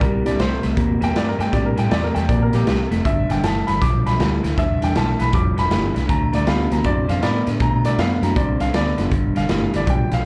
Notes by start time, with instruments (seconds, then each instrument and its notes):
0.01 fingered electric bass C2, clean electric guitar C3 G3, upright piano A#4, kick, closed hi-hat
0.25 fingered electric bass C2, clean electric guitar C3 G3, reed electric piano A#3 C4 D4 E4 G4, upright piano D5, snare, closed hi-hat
0.39 fingered electric bass C2, clean electric guitar C3 A3, upright piano C5, snare, closed hi-hat
0.63 fingered electric bass C2, clean electric guitar C3 A3, snare, closed hi-hat
0.77 fingered electric bass E2, clean electric guitar C3 A#3, kick, closed hi-hat
1.01 fingered electric bass E2, clean electric guitar C3 A#3, upright piano G5, snare, closed hi-hat
1.14 fingered electric bass G2, clean electric guitar C3 A3, upright piano D5, snare, closed hi-hat
1.28 upright piano A#4
1.39 fingered electric bass G2, clean electric guitar C3 A3, upright piano G5, snare, closed hi-hat
1.52 fingered electric bass A2, clean electric guitar C3 G3, reed electric piano A#3 C4 D4 E4 G4, upright piano D5, kick, snare, closed hi-hat
1.66 upright piano A#4
1.76 fingered electric bass A2, clean electric guitar C3 G3, upright piano G5, snare, closed hi-hat
1.89 fingered electric bass E2, clean electric guitar C3 A3, upright piano D5, snare, closed hi-hat
2.04 upright piano A#4
2.14 fingered electric bass E2, clean electric guitar C3 A3, upright piano G5, snare, closed hi-hat
2.28 fingered electric bass A#1, clean electric guitar C3 A#3, upright piano D5, kick, closed hi-hat
2.42 upright piano A#4
2.53 fingered electric bass A#1, clean electric guitar C3 A#3, upright piano G4, snare, closed hi-hat
2.67 fingered electric bass C2, clean electric guitar C3 A3, snare, closed hi-hat
2.91 fingered electric bass F1, clean electric guitar C3 A3, snare, closed hi-hat
3.05 fingered electric bass G1, clean electric guitar G2 D3, upright piano E5, kick, closed hi-hat
3.29 fingered electric bass G1, clean electric guitar G2 D3, upright piano G5, snare, closed hi-hat
3.43 fingered electric bass G1, clean electric guitar G2 E3, upright piano A5, snare, closed hi-hat
3.67 fingered electric bass G1, clean electric guitar G2 E3, upright piano B5, snare, closed hi-hat
3.81 fingered electric bass B1, clean electric guitar G2 F3, upright piano D6, kick, snare, closed hi-hat
4.06 fingered electric bass B1, clean electric guitar G2 F3, upright piano B5, snare, closed hi-hat
4.19 fingered electric bass D2, clean electric guitar G2 E3, reed electric piano A3 B3 D4 F4 G4, snare, closed hi-hat
4.43 fingered electric bass D2, clean electric guitar G2 E3, snare, closed hi-hat
4.58 fingered electric bass E2, clean electric guitar G2 D3, upright piano E5, kick, snare, closed hi-hat
4.82 fingered electric bass E2, clean electric guitar G2 D3, upright piano G5, snare, closed hi-hat
4.95 fingered electric bass B1, clean electric guitar G2 E3, upright piano A5, snare, closed hi-hat
5.19 fingered electric bass B1, clean electric guitar G2 E3, upright piano B5, snare, closed hi-hat
5.32 fingered electric bass F1, clean electric guitar G2 F3, upright piano D6, kick, closed hi-hat
5.57 fingered electric bass F1, clean electric guitar G2 F3, upright piano B5, snare, closed hi-hat
5.70 fingered electric bass G1, clean electric guitar G2 E3, reed electric piano A3 B3 D4 F4 G4, snare, closed hi-hat
5.94 fingered electric bass C2, clean electric guitar G2 E3, snare, closed hi-hat
6.08 fingered electric bass D2, clean electric guitar D3 A3, upright piano A#5, kick, closed hi-hat
6.32 fingered electric bass D2, clean electric guitar D3 A3, upright piano D5, snare, closed hi-hat
6.46 fingered electric bass D2, clean electric guitar D3 B3, reed electric piano A#3 C#4 D#4 F4 G4, upright piano F5, snare, closed hi-hat
6.71 fingered electric bass D2, clean electric guitar D3 B3, reed electric piano A3 C4 D4 E4 F#4, upright piano A#5, snare, closed hi-hat
6.84 fingered electric bass F#2, clean electric guitar D3 C4, upright piano D5, kick, closed hi-hat
7.08 fingered electric bass F#2, clean electric guitar D3 C4, upright piano F5, snare, closed hi-hat
7.22 fingered electric bass A2, clean electric guitar D3 B3, upright piano A#4 D5, snare, closed hi-hat
7.47 fingered electric bass A2, clean electric guitar D3 B3, snare, closed hi-hat
7.60 fingered electric bass B2, clean electric guitar D3 A3, upright piano A#5, kick, closed hi-hat
7.84 fingered electric bass B2, clean electric guitar D3 A3, upright piano D5, snare, closed hi-hat
7.98 fingered electric bass F#2, clean electric guitar D3 B3, upright piano F5, snare, closed hi-hat
8.22 fingered electric bass F#2, clean electric guitar D3 B3, reed electric piano A3 C4 D4 E4 F#4, upright piano A#5, snare, closed hi-hat
8.36 fingered electric bass C2, clean electric guitar D3 C4, upright piano D5, kick, closed hi-hat
8.60 fingered electric bass C2, clean electric guitar D3 C4, upright piano F5, snare, closed hi-hat
8.73 fingered electric bass D2, clean electric guitar D3 B3, upright piano D5, snare, closed hi-hat
8.97 fingered electric bass F#1, clean electric guitar D3 B3, reed electric piano A3 B3 D4 F4 A4, snare, closed hi-hat
9.11 fingered electric bass G1, clean electric guitar G2, kick, closed hi-hat
9.35 fingered electric bass G1, clean electric guitar G2 D3, upright piano F5, snare, closed hi-hat
9.48 fingered electric bass G1, clean electric guitar G2 E3, reed electric piano A3 B3 D4 F4 G4, snare, closed hi-hat
9.73 fingered electric bass G1, clean electric guitar G2 E3, upright piano D5, snare, closed hi-hat
9.86 fingered electric bass B1, clean electric guitar G2 F3, upright piano G5, kick, closed hi-hat
10.12 fingered electric bass B1, clean electric guitar G2 F3, upright piano F5, snare, closed hi-hat